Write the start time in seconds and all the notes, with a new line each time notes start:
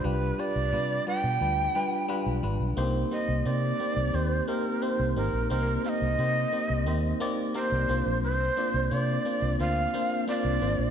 Already playing: G3 D4 F4 G4 B4 D5 B5
0.04 C2 G3 D4 F4 G4 B4
0.39 G3 D4 F4 G4 D5
0.56 C2
0.73 C3 G3 D4 F4 B4
1.07 G3 D4 F4 B4 G5
1.24 B2
1.41 D2 G3 D4 F4 B4
1.75 G3 D4 F4 B4
2.08 G3 D4 F4 B4
2.26 B1
2.43 G#1 G3 D4 F4 B4
2.60 B1
2.77 C2 A#3 C4 D#4 G4 C5
3.11 A#3 C4 D#4 G4 C5 D#5
3.29 C2
3.45 C3 A#3 C4 D#4 G4 C5 D5
3.80 A#3 C4 D#4 G4 C5
3.97 C2
4.14 D#2 A#3 C4 D#4 G4 C5
4.48 A#3 C4 D#4 G4 A#4 C5
4.82 A#3 C4 D#4 G4 C5
5.00 C2
5.16 G#1 A#3 C4 D#4 G4 A#4 C5
5.33 A#1
5.50 C2 A#3 C4 D#4 G4 A#4 C5
5.84 A#3 C4 D#4 G4 C5 F5
5.89 D#5
6.02 C2
6.19 C3 A#3 C4 D#4 G4 C5
6.52 A#3 C4 D#4 G4 C5
6.70 C2
6.86 D#2 A#3 C4 D#4 G4 C5
7.20 A#3 C4 D#4 G4 D5
7.54 A#3 C4 D#4 G4 A#4 C5
7.72 C2
7.89 C2 A#3 C4 D4 F4 C5
8.06 A#1
8.23 C2 C5
8.57 A#3 C4 D4 F4 D5
8.74 C2
8.91 C3 A#3 C4 D4 F4 C5 D5
9.25 A#3 C4 D4 F4 C5
9.42 C2
9.59 D2 A#3 C4 D4 F4 C5 F5
9.94 A#3 C4 D4 F4 C5
10.27 A#3 C4 D4 F4 C5 D5
10.45 C2
10.61 G#1 A#3 C4 D4 F4 C5
10.79 A#1